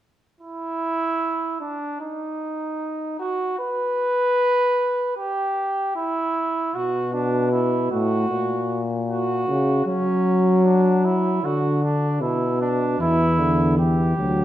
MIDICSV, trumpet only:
0, 0, Header, 1, 2, 480
1, 0, Start_track
1, 0, Tempo, 791557
1, 257, Time_signature, 4, 2, 24, 8
1, 3614, Tempo, 781250
1, 8828, End_track
2, 0, Start_track
2, 0, Title_t, "Trumpet"
2, 0, Program_c, 0, 56
2, 248, Note_on_c, 0, 64, 86
2, 953, Note_off_c, 0, 64, 0
2, 973, Note_on_c, 0, 62, 61
2, 1213, Note_off_c, 0, 62, 0
2, 1216, Note_on_c, 0, 63, 69
2, 1925, Note_off_c, 0, 63, 0
2, 1938, Note_on_c, 0, 66, 75
2, 2174, Note_off_c, 0, 66, 0
2, 2177, Note_on_c, 0, 71, 98
2, 3115, Note_off_c, 0, 71, 0
2, 3133, Note_on_c, 0, 67, 74
2, 3602, Note_off_c, 0, 67, 0
2, 3611, Note_on_c, 0, 64, 82
2, 4096, Note_on_c, 0, 66, 74
2, 4106, Note_off_c, 0, 64, 0
2, 4331, Note_off_c, 0, 66, 0
2, 4335, Note_on_c, 0, 62, 69
2, 4568, Note_off_c, 0, 62, 0
2, 4572, Note_on_c, 0, 64, 60
2, 4810, Note_off_c, 0, 64, 0
2, 4815, Note_on_c, 0, 66, 69
2, 5355, Note_off_c, 0, 66, 0
2, 5537, Note_on_c, 0, 66, 75
2, 5991, Note_off_c, 0, 66, 0
2, 6010, Note_on_c, 0, 61, 76
2, 6481, Note_off_c, 0, 61, 0
2, 6495, Note_on_c, 0, 62, 61
2, 6740, Note_on_c, 0, 64, 71
2, 6749, Note_off_c, 0, 62, 0
2, 6985, Note_on_c, 0, 66, 67
2, 6994, Note_off_c, 0, 64, 0
2, 7216, Note_off_c, 0, 66, 0
2, 7220, Note_on_c, 0, 62, 71
2, 7452, Note_off_c, 0, 62, 0
2, 7458, Note_on_c, 0, 64, 67
2, 7691, Note_off_c, 0, 64, 0
2, 7699, Note_on_c, 0, 62, 72
2, 7931, Note_off_c, 0, 62, 0
2, 7945, Note_on_c, 0, 64, 86
2, 8410, Note_off_c, 0, 64, 0
2, 8421, Note_on_c, 0, 67, 71
2, 8828, Note_off_c, 0, 67, 0
2, 8828, End_track
0, 0, End_of_file